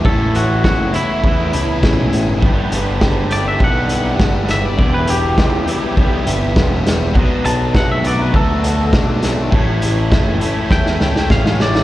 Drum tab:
HH |--x---x---x---x-|--x---x---x---x-|--x---x---x---x-|--x---x---x---x-|
SD |----o-------o---|----o-------o-o-|----o-------o-o-|----o-------o-o-|
BD |o---o---o---o---|o---o---o---o---|o---o---o---o---|o---o---o---o---|

HH |--x---x---------|
SD |----o---oooooooo|
BD |o---o---o---o---|